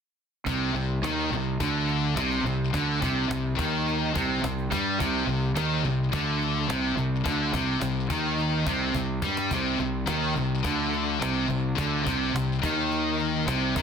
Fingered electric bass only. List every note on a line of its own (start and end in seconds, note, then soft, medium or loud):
0.46 0.73 C2 medium
0.74 1.01 C2 medium
1.02 1.29 D#2 loud
1.30 1.57 C2 medium
1.60 2.13 D2 loud
2.15 2.42 C2 loud
2.43 2.71 C2 medium
2.74 3.00 D2 medium
3.02 3.28 C2 loud
3.29 3.56 C2 medium
3.59 4.11 D#2 medium
4.15 4.41 C2 loud
4.43 4.69 C2 medium
4.72 4.98 G2 medium
5.00 5.26 C2 medium
5.27 5.54 C2 medium
5.56 5.82 D#2 medium
5.84 6.11 C2 medium
6.13 6.66 D2 medium
6.69 6.95 C2 loud
6.96 7.23 C2 medium
7.25 7.52 D2 medium
7.53 7.80 C2 loud
7.80 8.08 C2 medium
8.10 8.63 D#2 medium
8.66 8.93 C2 medium
8.94 9.21 C2 medium
9.22 9.49 G2 loud
9.51 9.78 C2 medium
9.80 10.06 C2 medium
10.07 10.34 D#2 medium
10.36 10.63 C2 medium
10.64 11.17 D2 loud
11.21 11.47 C2 medium
11.49 11.76 C2 medium
11.78 12.04 D2 medium
12.06 12.33 C2 medium
12.34 12.61 C2 medium
12.63 13.44 D#2 medium
13.47 13.74 C2 loud
13.76 13.82 D#2 medium